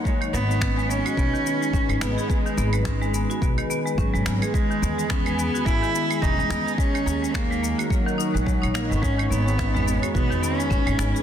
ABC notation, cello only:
X:1
M:4/4
L:1/16
Q:"Swing 16ths" 1/4=107
K:G#m
V:1 name="Cello"
G,2 B,4 C8 B,2 | G,3 F, G,4 z4 F,3 G,- | G,4 B,4 E4 D4 | C4 A,4 F,6 A, B, |
C2 B,6 B,2 C6 |]